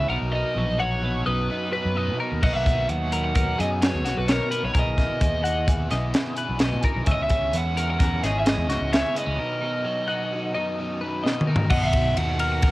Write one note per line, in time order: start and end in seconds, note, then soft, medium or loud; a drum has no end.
0.00 0.10 C#3 medium
0.00 0.10 E3 medium
0.00 0.12 B3 medium
0.08 0.20 B1 loud
0.08 0.55 B2 medium
0.08 0.36 F#3 medium
0.08 0.34 B3 loud
0.08 0.32 D#4 medium
0.08 0.57 A#4 loud
0.08 0.16 F#5 loud
0.21 0.43 B1 medium
0.32 0.57 F#3 medium
0.32 0.57 B3 medium
0.32 0.58 D#4 medium
0.32 0.81 D#5 medium
0.55 1.22 A#1 medium
0.55 0.81 B2 medium
0.55 0.80 F#3 medium
0.55 0.79 B3 medium
0.55 0.78 D#4 medium
0.79 1.00 B2 medium
0.79 1.02 F#3 medium
0.79 1.03 B3 medium
0.79 1.04 D#4 medium
0.79 1.26 C#5 medium
0.79 1.26 F#5 medium
1.01 1.48 B2 medium
1.01 1.28 F#3 medium
1.01 1.26 B3 medium
1.01 1.25 D#4 medium
1.25 1.48 B1 medium
1.25 1.96 F#2 medium
1.25 1.49 F#3 medium
1.25 1.50 B3 medium
1.25 1.52 D#4 medium
1.25 1.72 B4 medium
1.25 1.73 D#5 medium
1.49 1.94 B2 medium
1.49 1.74 F#3 medium
1.49 1.73 B3 medium
1.49 1.71 D#4 loud
1.71 1.96 F#3 medium
1.71 1.97 B3 medium
1.71 1.98 D#4 medium
1.71 1.96 B4 medium
1.71 2.16 B4 medium
1.85 2.10 F#2 medium
1.95 2.41 B2 medium
1.95 2.20 F#3 medium
1.95 2.19 B3 medium
1.95 2.17 D#4 medium
1.95 2.20 D#5 medium
2.08 2.19 B2 medium
2.17 2.42 F#3 medium
2.17 2.42 B3 medium
2.17 2.43 D#4 medium
2.17 2.43 A#4 medium
2.21 2.67 D#4 medium
2.32 2.42 D#2 medium
2.41 2.53 B1 loud
2.41 2.87 B2 medium
2.41 2.68 F#3 medium
2.41 3.17 A#3 medium
2.41 2.67 B3 medium
2.41 2.65 D#4 loud
2.41 2.53 D#5 medium
2.41 2.89 F#5 medium
2.41 kick loud
2.41 crash medium
2.53 2.86 B1 medium
2.53 2.89 E5 loud
2.65 2.88 F#3 medium
2.65 2.89 B3 medium
2.65 2.91 D#4 medium
2.65 kick medium
2.65 closed hi-hat medium
2.88 3.55 D#2 medium
2.88 3.13 B2 medium
2.88 3.12 F#3 medium
2.88 3.11 B3 medium
2.88 3.10 D#4 medium
2.88 3.23 F#5 loud
2.88 closed hi-hat medium
3.11 3.33 B2 medium
3.11 3.34 F#3 medium
3.11 3.35 B3 medium
3.11 3.36 D#4 medium
3.11 3.34 A#4 medium
3.11 closed hi-hat medium
3.25 3.60 F#5 loud
3.33 3.80 B2 medium
3.33 3.59 F#3 medium
3.33 3.58 B3 medium
3.33 3.56 D#4 medium
3.33 3.59 A#4 medium
3.33 kick loud
3.33 closed hi-hat medium
3.57 3.91 F#2 medium
3.57 4.29 F#2 medium
3.57 3.81 F#3 medium
3.57 3.82 B3 medium
3.57 3.83 D#4 medium
3.57 4.04 G#4 medium
3.57 closed hi-hat medium
3.61 3.67 D#5 medium
3.81 4.25 B2 medium
3.81 4.06 F#3 medium
3.81 4.05 B3 medium
3.81 4.04 D#4 medium
3.81 4.18 C#5 medium
3.81 snare loud
3.81 closed hi-hat loud
3.94 4.06 D#2 medium
4.04 4.16 B1 loud
4.04 4.26 F#3 medium
4.04 4.28 B3 medium
4.04 4.29 D#4 medium
4.04 4.28 F#4 medium
4.04 snare soft
4.04 closed hi-hat medium
4.18 4.39 B1 medium
4.18 4.30 B4 medium
4.26 4.71 B2 medium
4.26 4.52 F#3 medium
4.26 4.51 B3 medium
4.26 4.49 D#4 loud
4.26 4.51 C#5 medium
4.26 snare loud
4.26 closed hi-hat medium
4.31 4.62 A#4 medium
4.49 4.74 F#3 medium
4.49 4.74 B3 medium
4.49 4.75 D#4 medium
4.49 4.73 B4 medium
4.49 closed hi-hat medium
4.63 4.74 B1 medium
4.63 4.76 C#5 medium
4.73 4.85 B1 medium
4.73 5.20 B2 medium
4.73 5.19 E3 medium
4.73 5.00 B3 medium
4.73 4.98 E4 loud
4.73 4.97 G#4 loud
4.73 5.21 A#4 medium
4.73 kick loud
4.73 closed hi-hat medium
4.79 5.66 D#5 medium
4.87 5.08 B1 medium
4.97 5.21 B3 medium
4.97 5.22 E4 medium
4.97 5.22 G#4 medium
4.97 kick medium
4.97 snare soft
4.97 closed hi-hat medium
5.20 5.87 D#2 loud
5.20 5.44 E3 medium
5.20 5.43 B3 medium
5.20 5.42 E4 medium
5.20 5.42 G#4 medium
5.20 kick loud
5.20 closed hi-hat loud
5.42 5.92 B2 medium
5.42 5.65 E3 medium
5.42 5.67 B3 medium
5.42 5.67 E4 medium
5.42 5.69 G#4 medium
5.42 5.91 F#5 medium
5.42 closed hi-hat medium
5.65 6.12 E3 medium
5.65 5.92 B3 medium
5.65 5.90 E4 medium
5.65 5.88 G#4 medium
5.65 kick loud
5.65 closed hi-hat loud
5.89 6.13 B1 medium
5.89 6.60 B2 medium
5.89 6.14 B3 medium
5.89 6.14 E4 medium
5.89 6.14 G#4 medium
5.89 6.37 D#5 medium
5.89 snare soft
5.89 closed hi-hat medium
6.13 6.56 B2 loud
6.13 6.57 E3 medium
6.13 6.38 B3 loud
6.13 6.36 E4 loud
6.13 6.34 G#4 loud
6.13 snare loud
6.13 closed hi-hat loud
6.35 6.59 B3 medium
6.35 6.59 E4 medium
6.35 6.60 G#4 medium
6.35 6.61 B4 medium
6.35 closed hi-hat medium
6.49 6.74 B1 medium
6.58 7.04 B2 medium
6.58 7.05 E3 medium
6.58 6.84 B3 loud
6.58 6.82 E4 medium
6.58 6.80 G#4 medium
6.58 6.84 D#5 medium
6.58 snare loud
6.58 closed hi-hat medium
6.73 6.83 B2 medium
6.81 7.06 B3 medium
6.81 7.09 D#4 medium
6.81 7.05 E4 medium
6.81 7.04 G#4 medium
6.81 7.08 A#4 medium
6.81 kick medium
6.81 closed hi-hat medium
6.96 7.06 B1 medium
7.04 7.18 C#2 loud
7.04 7.52 C#3 medium
7.04 7.50 G#3 medium
7.04 7.55 B3 medium
7.04 7.31 C#4 medium
7.04 7.30 E4 medium
7.04 7.27 G#4 loud
7.04 7.54 E5 loud
7.04 kick loud
7.04 closed hi-hat medium
7.12 7.22 D#5 medium
7.18 7.51 C#2 medium
7.23 7.57 E5 loud
7.29 7.52 C#4 medium
7.29 7.52 E4 medium
7.29 7.53 G#4 medium
7.29 kick medium
7.29 closed hi-hat medium
7.51 8.19 E2 medium
7.51 9.39 E3 medium
7.51 7.76 G#3 medium
7.51 8.01 B3 medium
7.51 7.75 C#4 medium
7.51 7.74 E4 medium
7.51 7.74 G#4 medium
7.51 closed hi-hat medium
7.57 7.89 F#5 loud
7.75 8.24 C#3 medium
7.75 7.97 G#3 medium
7.75 7.98 C#4 medium
7.75 7.99 E4 medium
7.75 8.00 G#4 medium
7.75 7.98 A#4 medium
7.75 closed hi-hat medium
7.91 8.25 F#5 loud
7.98 8.44 G#3 medium
7.98 8.46 B3 medium
7.98 8.23 C#4 medium
7.98 8.22 E4 medium
7.98 8.20 G#4 medium
7.98 8.23 A#4 medium
7.98 kick loud
7.98 snare soft
7.98 closed hi-hat loud
8.21 8.55 G#1 medium
8.21 8.93 G#2 medium
8.21 8.45 C#4 medium
8.21 8.46 E4 medium
8.21 8.46 G#4 medium
8.21 8.69 G#4 medium
8.21 8.39 D#5 medium
8.21 snare soft
8.21 closed hi-hat medium
8.39 8.46 E5 medium
8.44 8.91 C#3 medium
8.44 8.91 G#3 medium
8.44 8.92 B3 medium
8.44 8.71 C#4 medium
8.44 8.70 E4 loud
8.44 8.67 G#4 loud
8.44 8.93 D#5 medium
8.44 snare loud
8.44 closed hi-hat loud
8.57 8.69 E2 medium
8.69 8.80 C#2 loud
8.69 8.92 C#4 medium
8.69 8.94 E4 medium
8.69 8.93 F#4 medium
8.69 8.94 G#4 medium
8.69 snare soft
8.69 closed hi-hat medium
8.81 9.02 C#2 medium
8.92 9.37 C#3 medium
8.92 9.38 G#3 medium
8.92 9.15 B3 medium
8.92 9.17 C#4 medium
8.92 9.16 E4 medium
8.92 9.14 G#4 loud
8.92 9.16 C#5 medium
8.92 9.17 E5 medium
8.92 snare loud
8.92 closed hi-hat medium
9.15 9.26 B3 medium
9.15 9.39 C#4 medium
9.15 9.38 E4 medium
9.15 9.37 G#4 medium
9.15 9.39 B4 medium
9.15 11.22 D#5 medium
9.15 closed hi-hat medium
9.26 9.38 C#2 medium
9.26 9.39 C#4 medium
9.38 9.85 B2 medium
9.38 9.83 D#3 medium
9.38 9.63 F#3 loud
9.38 9.62 B3 loud
9.38 9.60 D#4 loud
9.38 9.85 A#4 medium
9.61 9.84 F#3 medium
9.61 9.85 B3 medium
9.61 9.86 D#4 medium
9.84 10.09 D#3 medium
9.84 10.08 F#3 medium
9.84 10.08 B3 medium
9.84 10.08 D#4 medium
10.08 10.57 B2 medium
10.08 10.31 D#3 medium
10.08 10.31 F#3 medium
10.08 10.33 B3 medium
10.08 10.34 D#4 medium
10.08 10.54 F#5 medium
10.32 10.78 D#3 medium
10.32 10.57 F#3 medium
10.32 10.55 B3 medium
10.32 10.54 D#4 medium
10.55 11.25 F#2 medium
10.55 10.79 F#3 medium
10.55 10.79 B3 medium
10.55 10.80 D#4 medium
10.55 11.01 D#5 medium
10.78 11.23 B2 medium
10.78 11.24 D#3 medium
10.78 11.04 F#3 medium
10.78 11.02 B3 medium
10.78 11.01 D#4 loud
11.01 11.25 F#3 medium
11.01 11.26 B3 medium
11.01 11.26 D#4 medium
11.01 11.24 B4 medium
11.24 11.69 B2 medium
11.24 11.70 D#3 medium
11.24 11.50 F#3 medium
11.24 11.48 B3 medium
11.24 11.47 D#5 medium
11.24 snare medium
11.28 11.47 D#4 loud
11.41 mid tom medium
11.47 11.71 B3 medium
11.47 11.70 D#4 medium
11.47 11.71 A#4 medium
11.51 11.71 F#3 medium
11.56 floor tom loud
11.70 11.81 B1 loud
11.70 12.15 B2 medium
11.70 11.96 F#3 loud
11.70 11.95 B3 medium
11.70 11.93 D#4 loud
11.70 11.76 D#5 medium
11.70 12.17 F#5 loud
11.70 kick loud
11.70 crash loud
11.81 12.14 B1 medium
11.81 12.17 E5 loud
11.93 12.16 F#3 medium
11.93 12.17 B3 medium
11.93 12.18 D#4 medium
11.93 kick medium
11.93 ride medium
12.15 12.71 D#2 medium
12.15 12.42 B2 medium
12.15 12.40 F#3 medium
12.15 12.40 B3 medium
12.15 12.38 D#4 medium
12.15 12.51 F#5 loud
12.15 ride loud
12.39 12.62 B2 medium
12.39 12.63 F#3 medium
12.39 12.64 B3 medium
12.39 12.66 D#4 medium
12.39 12.62 A#4 medium
12.39 ride medium
12.52 12.71 F#5 loud
12.62 12.71 B2 medium
12.62 12.71 F#3 medium
12.62 12.71 B3 medium
12.62 12.71 A#4 medium
12.62 kick loud
12.62 snare soft
12.62 ride loud
12.66 12.71 D#4 medium